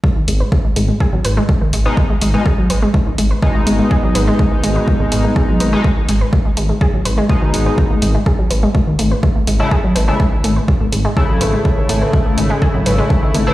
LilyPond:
<<
  \new Staff \with { instrumentName = "Analog polysynth" } { \clef bass \time 4/4 \key gis \phrygian \tempo 4 = 124 r2. r8. <b, gis dis'>16 | r8. <b, gis dis'>16 r2 <b, gis dis'>4~ | <b, gis dis'>2.~ <b, gis dis'>8. <b, gis dis'>16 | r2. <b, gis dis'>4 |
r2. r8. <cis a e'>16 | r8. <cis a e'>16 r2 <cis a e'>4~ | <cis a e'>2.~ <cis a e'>8. <cis a e'>16 | }
  \new Staff \with { instrumentName = "Synth arpeggio sound" } { \clef bass \time 4/4 \key gis \phrygian gis16 dis16 gis16 b'16 gis16 gis16 gis16 gis16 gis'16 fis16 b'16 gis16 gis16 dis16 gis16 b'16 | gis16 gis16 gis16 gis16 gis'16 fis16 b'16 gis16 gis16 dis16 gis16 b'16 gis16 gis16 gis16 gis16 | gis'16 fis16 b'16 gis16 gis16 dis16 gis16 b'16 gis16 gis16 gis16 gis16 gis'16 fis16 b'16 gis16 | gis16 dis16 gis16 b'16 gis16 gis16 gis16 gis16 gis'16 fis16 b'16 gis16 r16 dis16 gis16 b'16 |
gis16 a16 gis16 gis16 gis'16 fis16 b'16 gis16 gis16 dis16 a16 b'16 gis16 a16 gis16 gis16 | gis'16 fis16 b'16 gis16 gis16 dis16 a16 b'16 gis16 a16 gis16 gis16 gis'16 fis16 b'16 gis16 | gis16 dis16 a16 b'16 gis16 a16 gis16 gis16 gis'16 fis16 b'16 gis16 gis16 dis16 a16 b'16 | }
  \new Staff \with { instrumentName = "Detuned saw bass" } { \clef bass \time 4/4 \key gis \phrygian r8 gis,,16 r8. gis,,16 r8 gis,,16 gis,,16 r8. gis,,16 r16 | r8 gis,,16 r8. gis,,16 r8 gis,,16 gis,,16 r8. gis,,16 r16 | r8 gis,,16 r8. gis,,16 r8 gis,,16 gis,,16 r8. gis,,16 r16 | r8 gis,,16 r8. gis,,16 r8 gis,,16 gis,,16 r8. gis,,16 r16 |
r8 gis,,16 r8. gis,,16 r8 gis,,16 gis,,16 r8. gis,,16 r16 | r8 gis,,16 r8. gis,,16 r8 gis,,16 gis,,16 r8. gis,,16 r16 | r8 gis,,16 r8. gis,,16 r8 gis,,16 gis,,16 r8. gis,,16 r16 | }
  \new DrumStaff \with { instrumentName = "Drums" } \drummode { \time 4/4 bd8 hho8 bd8 hho8 bd8 hho8 bd8 hho8 | bd8 hho8 bd8 hho8 bd8 hho8 bd8 hho8 | bd8 hho8 bd8 hho8 bd8 hho8 bd8 hho8 | bd8 hho8 bd8 hho8 bd8 hho8 bd8 hho8 |
bd8 hho8 bd8 hho8 bd8 hho8 bd8 hho8 | bd8 hho8 bd8 hho8 bd8 hho8 bd8 hho8 | bd8 hho8 bd8 hho8 bd8 hho8 bd8 hho8 | }
>>